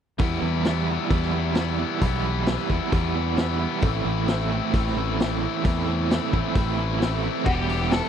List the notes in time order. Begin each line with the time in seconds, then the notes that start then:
0.19 E2 E3 G3 B3 E4, kick, open hi-hat
0.40 E2 G3 B3 E4
0.65 E3 G3 B3 E4, snare, open hi-hat
0.86 E3 G3 B3 E4
1.09 E2 E3 G3 B3 E4, kick, open hi-hat
1.22 snare
1.31 E3 G3 B3 E4
1.54 E3 G3 B3 E4, snare, open hi-hat
1.78 G3 B3 E4
1.99 B1 E3 G3 B3 E4, kick, open hi-hat
2.24 G3 B3 E4
2.46 E3 G3 B3 E4, snare, open hi-hat
2.69 E2 E3 G3 B3 E4, kick
2.92 E2 E3 G3 B3 E4, kick, open hi-hat
3.15 E3 G3 B3 E4
3.37 E3 G3 B3 E4, snare, open hi-hat
3.59 G3 B3 E4
3.81 A1 A2 E3 A3 C4 E4, kick, open hi-hat
4.05 A1 A3 C4 E4
4.27 E3 A3 C4 E4, snare, open hi-hat
4.50 A2 E3 A3 C4 E4
4.73 A1 A2 E3 A3 C4 E4, kick, open hi-hat
4.87 snare
4.95 A2 E3 A3 C4 E4
5.18 E3 A3 C4 E4, snare, open hi-hat
5.41 A3 C4 E4
5.63 E2 A2 E3 A3 C4 E4, kick, open hi-hat
5.87 A3 C4 E4
6.09 E3 A3 C4 E4, snare, open hi-hat
6.32 A1 A2 E3 A3 C4 E4, kick
6.54 A1 A2 E3 A3 C4 E4, kick, open hi-hat
6.78 A2 E3 A3 C4 E4
7.00 E3 A3 C4 E4, snare, open hi-hat
7.24 A3 C4 E4
7.45 E1 E2 B2 E3 G3 B3 E4 G4, kick, crash
7.69 open hi-hat
7.91 E2 B2 E3 G3 B3 E4 A4, snare, open hi-hat